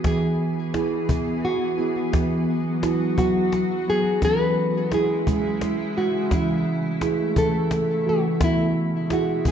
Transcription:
0.04 E3 B3 G#4, cajon bass, cajon slap
0.22 cajon slap
0.74 E4 G#4, cajon slap
1.08 B3, cajon bass
1.27 cajon slap
1.45 F#4
1.78 B3 E4, cajon slap
1.96 cajon slap
2.12 E3 F#3 B3 F#4, cajon bass, cajon slap
2.31 cajon slap
2.83 E4 F#4, cajon slap
3.18 F#3 B3 F#4, cajon bass
3.35 cajon slap
3.52 cajon slap
3.88 F#3 F#4 G#4, cajon slap
4.04 cajon slap
4.22 C#3 E3 G#3 C#4 E4 B4, cajon bass, cajon slap
4.40 cajon slap
4.92 E4 G#4, cajon slap
5.27 G#3 C#4, cajon bass
5.45 cajon slap
5.61 cajon slap
5.97 G#3 F#4, cajon slap
6.14 cajon slap
6.31 E3 A3 C#4 E4, cajon bass, cajon slap
6.49 cajon slap
7.01 E4 G#4, cajon slap
7.36 E3 C#4 A4, cajon bass
7.71 cajon slap
7.88 cajon slap
8.06 E3 F#4
8.40 B2 E3 G#3 B3 E4, cajon bass, cajon slap
8.44 E4
8.57 cajon slap
9.10 E4 F#4 G#4, cajon slap
9.45 B3 G#4, cajon bass

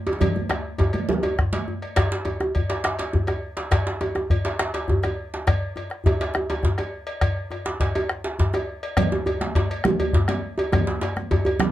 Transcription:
0.07 cowbell, djembe tone
0.13 djembe tone
0.20 bombo rim, bombo low, cowbell, djembe tone, djembe bass, low conga
0.35 djembe tone, high conga
0.49 bombo rim, cowbell, djembe slap, djembe tone
0.78 bombo rim, bombo low, cowbell, djembe slap, djembe tone, djembe bass
0.93 bombo rim, cowbell, high conga
1.09 high conga, djembe tone, low conga
1.23 bombo rim, cowbell, djembe tone
1.38 bombo rim, bombo low, djembe slap, djembe bass
1.53 cowbell, djembe slap, high conga
1.68 djembe slap, djembe tone, high conga
1.82 bombo rim, cowbell
1.96 bombo rim, bombo low, cowbell, djembe slap, djembe bass
2.12 djembe slap
2.25 cowbell, djembe slap, djembe tone
2.40 bombo rim, djembe slap, djembe tone
2.55 bombo rim, bombo low, cowbell, djembe bass
2.69 cowbell, djembe slap
2.84 bombo rim, djembe slap
2.99 cowbell, djembe slap
3.13 bombo rim, bombo low, djembe tone, djembe bass
3.27 bombo rim, cowbell, djembe slap, djembe tone
3.57 cowbell, djembe slap
3.71 bombo rim, bombo low, cowbell, djembe slap, djembe bass
3.87 djembe slap
4.01 cowbell, djembe slap, djembe tone
4.15 bombo rim, djembe slap, djembe tone
4.30 bombo rim, bombo low, cowbell, djembe bass
4.45 cowbell, djembe slap
4.59 bombo rim, djembe slap
4.74 cowbell, djembe slap
4.88 bombo rim, bombo low, djembe tone, djembe bass
5.03 bombo rim, cowbell, djembe slap, djembe tone
5.34 djembe slap
5.47 bombo rim, bombo low, cowbell, djembe slap, djembe bass
5.76 cowbell, djembe slap, djembe tone
5.90 bombo rim, djembe slap
6.04 bombo low, cowbell, djembe tone, djembe bass
6.21 cowbell, djembe slap
6.34 bombo rim, djembe slap, djembe tone
6.50 cowbell, djembe tone
6.63 bombo rim, bombo low, djembe slap, djembe tone, djembe bass
6.78 bombo rim, cowbell, djembe slap, djembe tone
7.07 cowbell
7.21 bombo rim, bombo low, cowbell, djembe slap, djembe bass
7.37 bombo rim
7.51 bombo rim, cowbell, djembe tone
7.65 bombo rim, djembe slap
7.80 bombo low, cowbell, djembe slap, djembe bass
7.95 cowbell, djembe tone
8.09 bombo rim, djembe slap
8.24 djembe slap
8.39 bombo rim, bombo low, djembe slap, djembe tone, djembe bass
8.53 bombo rim, cowbell, djembe slap, djembe tone
8.83 cowbell
8.97 bombo rim, bombo low, cowbell, djembe slap, high conga, djembe bass, low conga
9.12 djembe tone, high conga
9.26 cowbell, djembe slap, djembe tone, high conga, djembe bass
9.41 bombo rim, djembe slap, high conga
9.55 bombo low, cowbell, djembe slap, djembe bass
9.71 cowbell
9.84 bombo rim, djembe slap, high conga, djembe tone, low conga
10.00 cowbell, djembe bass
10.13 bombo rim, bombo low, djembe slap, djembe tone, high conga, djembe bass
10.28 bombo rim, cowbell, djembe slap, high conga
10.58 cowbell, djembe tone
10.72 bombo rim, bombo low, cowbell, djembe slap, high conga, djembe bass, low conga
10.87 djembe slap, high conga
11.01 cowbell, djembe slap, djembe tone, high conga
11.16 bombo rim, djembe slap, high conga
11.31 bombo rim, bombo low, cowbell, djembe tone, djembe bass
11.45 cowbell, djembe bass
11.60 bombo rim, djembe slap, high conga, low conga

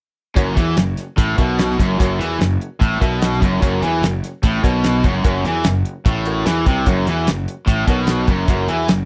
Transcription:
0.36 F#1 F#2 F#4 A#4 C#5, kick, closed hi-hat
0.56 E2 E3, kick, closed hi-hat
0.76 F#1 F#2, snare, closed hi-hat
0.97 snare, closed hi-hat
1.17 A1 A2, kick, closed hi-hat
1.37 B1 B2 F#4 A#4 E5, kick, closed hi-hat
1.59 snare, closed hi-hat
1.70 snare
1.79 F#1 F#2, kick, closed hi-hat
1.99 F#1 F#2 F#4 A#4 C#5, kick, closed hi-hat
2.19 E2 E3, closed hi-hat
2.39 F#1 F#2, snare, closed hi-hat
2.61 closed hi-hat
2.80 A1 A2, kick, closed hi-hat
3.01 B1 B2 F#4 A#4 E5, kick, closed hi-hat
3.22 snare, closed hi-hat
3.33 snare
3.40 F#1 F#2, kick, closed hi-hat
3.60 F#1 F#2 F#4 A#4 C#5, kick, closed hi-hat
3.82 E2 E3, closed hi-hat
4.02 F#1 F#2, snare, closed hi-hat
4.24 snare, closed hi-hat
4.43 A1 A2, kick, closed hi-hat
4.63 B1 B2 F#4 A#4 C#5, kick, closed hi-hat
4.84 snare, closed hi-hat
5.04 F#1 F#2, kick, closed hi-hat
5.24 F#1 F#2 F#4 A#4 C#5, kick, closed hi-hat
5.44 E2 E3, closed hi-hat
5.64 F#1 F#2, snare, closed hi-hat
5.85 closed hi-hat
6.06 A1 A2, kick, closed hi-hat
6.25 F#4 A#4 C#5, closed hi-hat
6.46 E2 E3, snare, closed hi-hat
6.66 C2 C3, kick, closed hi-hat
6.86 F#1 F#2 F#4 A#4 C#5, kick, closed hi-hat
7.06 E2 E3, closed hi-hat
7.27 F#1 F#2, snare, closed hi-hat
7.48 closed hi-hat
7.67 A1 A2, kick, closed hi-hat
7.87 B1 B2 F#4 A#4 C#5, kick, closed hi-hat
8.07 snare, closed hi-hat
8.27 F#1 F#2, kick, closed hi-hat
8.47 F#1 F#2 F#4 A#4 C#5, kick, closed hi-hat
8.68 E2 E3, closed hi-hat
8.88 F#1 F#2, snare, closed hi-hat

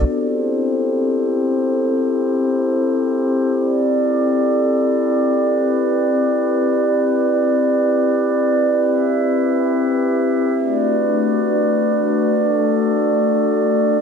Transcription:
0.05 C4 E4 G4 A4 C5
3.55 A4 D5
5.30 B4
7.05 C4 D5
8.81 E5
10.56 A3 D4 F#4 B4 D5
12.31 A4

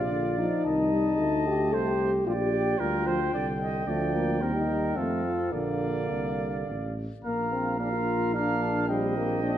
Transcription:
Already playing: A#1 C3 F4 D5 F5
0.12 D3
0.38 F3 D#4
0.65 C2 D#3 D#5 A5
0.92 G3
1.19 D2 A3
1.47 G4
1.73 C2 A4 C5
1.87 G4
2.26 A#1 F4 D5 G5
2.41 G4
2.79 D2 G3 F4 A#4
3.06 F3 C5
3.33 C2 D3 D5
3.61 D#5
3.87 D2 F3 A3 D5
4.15 A#3
4.41 D#2 G3 C4 A#4
4.55 D#4
4.96 F2 A3 C4 A4 F5
5.25 F3
5.52 A#1 D3 A#3 D5 F5
6.11 C2
6.68 A1
7.24 A#1 A#3 F5 A#5
7.52 C4
7.80 A#3 D4 F5 A#5
7.92 F4
8.34 A#3 D4 F5 A#5
8.62 A5
8.89 G3 C4 D#5 G5
9.17 A#3
9.43 D4

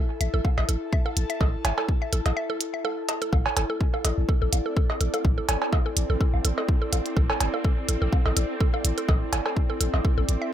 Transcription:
Already playing: E4 A4 E5
0.21 A1 E5, closed hi-hat
0.34 A1 A4
0.42 A5, kick, low woodblock
0.58 A1 E5, cowbell
0.69 A1 A4, closed hi-hat
0.93 E5, kick
1.06 A4, low woodblock
1.17 A1, closed hi-hat
1.30 E5, closed hi-hat
1.41 A1 A4, kick, cowbell
1.65 G1 E5, closed hi-hat, cowbell, low woodblock
1.78 A4, cowbell
1.89 kick
2.02 E5
2.13 A1 A4, closed hi-hat
2.26 A1, closed hi-hat, cowbell, low woodblock
2.37 E5
2.50 A4
2.61 closed hi-hat
2.74 E5
2.85 A4, low woodblock
3.09 A5, closed hi-hat, cowbell
3.22 A4, closed hi-hat
3.32 A1 C4 A4, kick, low woodblock
3.46 cowbell
3.57 G1 A4 D5, closed hi-hat, cowbell
3.70 A4
3.81 kick
3.94 A4, low woodblock
4.05 A1 A4, closed hi-hat, cowbell
4.18 A1
4.29 A4, kick
4.42 A1 A4
4.53 A1, closed hi-hat, low woodblock
4.66 A4
4.77 A4, kick
4.90 cowbell
5.01 A1 A4, closed hi-hat
5.14 A4, closed hi-hat, low woodblock
5.25 A1, kick
5.38 A4
5.49 G1 A4, closed hi-hat, cowbell
5.62 cowbell
5.73 A4, kick, cowbell, low woodblock
5.86 A4
5.97 A1, closed hi-hat
6.10 A1 A4
6.21 A4, kick
6.34 A1, low woodblock
6.45 A1 A4, closed hi-hat
6.58 A4, cowbell
6.69 kick
6.82 A4
6.93 A1 A4, closed hi-hat, low woodblock
7.06 closed hi-hat
7.17 A1 A4, kick
7.30 A4, cowbell
7.41 G1, closed hi-hat, cowbell
7.54 A4, low woodblock
7.65 A4, kick
7.89 A1 A4, closed hi-hat
8.02 A1 A4
8.13 kick, low woodblock
8.26 A1 A4, cowbell
8.37 A1 A4, closed hi-hat
8.61 A4, kick
8.74 A4, low woodblock
8.85 A1, closed hi-hat
8.98 A4, closed hi-hat
9.09 A1 A4, kick, cowbell
9.33 G1 A4, closed hi-hat, cowbell, low woodblock
9.46 A4, cowbell
9.57 kick
9.70 A4
9.80 A1 A4, closed hi-hat
9.94 A1, cowbell, low woodblock
10.05 A4, kick
10.18 A1 A4
10.29 A1, closed hi-hat
10.42 E5

